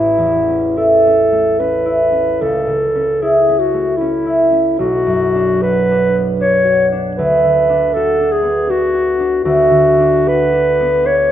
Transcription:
Already playing: A1 C#4 E4 A4 C#5
0.18 E2
0.49 C#4
0.77 E4 A4
1.07 C#4
1.32 A3
1.60 C#4 B4
1.86 E4
2.12 C#4
2.41 C#2 A4
2.67 C#3
2.95 C#4
3.22 E4 G#4
3.49 C#4
3.59 F#4
3.74 A3
3.98 C#4 E4
4.26 E4
4.52 C#4
4.79 B1 F#4
5.07 F#2
5.35 D4
5.62 F#4 B4
5.91 D4
6.16 B3
6.40 D4 C#5
6.65 F#4
6.92 D4
7.17 D2 B4
7.44 D3
7.69 D4
7.93 F#4 A4
8.20 D4
8.32 G#4
8.42 B3
8.69 D4 F#4
8.94 F#4
9.20 D4
9.44 D2 F#4
9.71 D3
10.00 D4
10.26 F#4 B4
10.53 D4
10.81 B3
11.04 D4 C#5

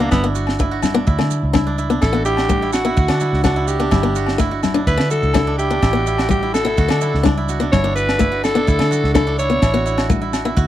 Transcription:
Already playing: E4 F#4
0.00 A#3 B3 D4
0.11 G1 B3 E4, kick, snare, muted conga, high conga, low agogo, maracas
0.24 B3 D4
0.35 F#4, maracas
0.47 snare, low agogo
0.59 A3 E4, kick, maracas
0.71 F#4
0.82 E4, snare, muted conga, high conga, low agogo, maracas
0.94 B3 D4
1.07 D2 E4, kick, muted conga, maracas
1.19 D3 A3, snare, low agogo
1.31 muted conga, maracas
1.43 C#2
1.53 D4 E4, kick, snare, high conga, low agogo, maracas
1.67 D4
1.78 E4, maracas
1.90 B3 D4, maracas
2.01 A1 E4 A4, kick, snare, muted conga, low agogo, maracas
2.13 B3 F#4
2.25 E4 G4, maracas
2.37 F#4, snare, low agogo
2.49 A3, kick, high conga, maracas
2.62 E4
2.73 F#4, snare, muted conga, low agogo, maracas
2.85 B3 E4
2.97 D2 F#4, kick, muted conga, maracas
3.08 D3 A3 D4, snare, low agogo
3.20 E4, muted conga, maracas
3.33 C#2, snare
3.44 D4 F#4, kick, snare, high conga, low agogo, maracas
3.56 E4
3.67 F#4 G4, maracas
3.80 B3 D4, maracas
3.91 G1 E4, kick, snare, muted conga, high conga, low agogo, maracas
4.03 B3 D4
4.15 F#4, maracas
4.26 snare, low agogo
4.38 A3 E4, kick, snare, maracas
4.51 F#4
4.63 E4, snare, muted conga, high conga, low agogo, maracas
4.74 D4
4.87 D2 E4 B4, kick, muted conga, maracas
4.97 D3 A3, snare, low agogo
5.10 F#4 A4, muted conga, maracas
5.23 C#2, maracas
5.34 D4 E4, kick, snare, high conga, low agogo, maracas
5.47 D4
5.58 E4 G4, maracas
5.71 B3 D4, maracas
5.82 A1 E4, kick, snare, muted conga, low agogo, maracas
5.93 B3 F#4
6.07 E4, maracas
6.18 F#4, snare, low agogo
6.29 A3 G4, kick, high conga, maracas
6.43 E4
6.54 F#4 A4, snare, muted conga, low agogo, maracas
6.65 B3 E4
6.77 D2 F#4, kick, muted conga, maracas
6.88 D3 A3 D4, snare, low agogo
7.01 E4, muted conga, maracas
7.14 C#2, snare
7.23 D4, kick, snare, high conga, low agogo, maracas
7.37 E4
7.49 F#4, maracas
7.60 B3 D4, maracas
7.72 G1 E4 C#5, kick, snare, muted conga, high conga, low agogo, maracas
7.84 B3 D4
7.95 F#4 B4, maracas
8.09 snare, low agogo
8.19 A3 E4, kick, maracas
8.32 F#4
8.44 E4 A4, snare, muted conga, low agogo, maracas
8.55 B3 D4
8.67 D2 E4, kick, muted conga, maracas
8.79 D3 A3, snare, low agogo
8.91 F#4, muted conga, maracas
9.04 C#2, snare
9.14 D4 E4 A4, kick, snare, high conga, low agogo, maracas
9.27 D4
9.38 E4 C#5, maracas
9.50 B3, maracas
9.62 A1 E4, kick, snare, muted conga, low agogo, maracas
9.74 B3 F#4
9.86 E4, maracas
9.98 F#4, snare, low agogo
10.10 A3, kick, high conga, maracas
10.21 E4
10.33 F#4, snare, muted conga, low agogo, maracas
10.45 B3 E4
10.56 D2 F#4, kick, muted conga, maracas

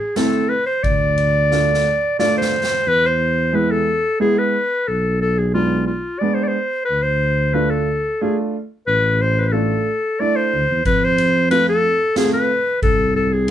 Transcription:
Already playing: G#4
0.16 A3 C4 E4 A4, snare, ride
0.50 B4
0.66 C5
0.83 D2 D5, kick, ride
1.18 ride
1.51 A3 D4 F4, snare
1.74 snare
2.19 A3 D4 F4 D5, snare
2.38 C5, snare
2.64 snare
2.86 E2 B4
3.06 C5
3.53 G#3 B3 E4 B4
3.71 A4
4.20 G#3 B3 E4 G#4
4.39 B4
4.88 B1 A4
5.21 A4
5.39 G#4
5.54 G#3 B3 D4 F4
5.87 F4
6.19 G#3 B3 D4 D5
6.35 C5
6.44 D5
6.48 C5
6.85 B4
6.90 D2
7.03 C5
7.53 A3 D4 F4 B4
7.71 A4
8.21 A3 D4 F4 G#4
8.87 A1 B4
9.22 C5
9.38 B4 C5
9.46 B4
9.52 A3 D4 F4 A4
10.20 A3 D4 E4 D5
10.36 C5
10.54 D2
10.70 E2
10.85 F2 B4, kick, ride
11.04 C5
11.18 ride
11.51 A3 C4 F4 B4, ride
11.69 A4
12.16 A3 C4 F4 G#4, snare, ride
12.33 B4
12.82 C2 A4, kick, ride
13.16 A4
13.33 G#4

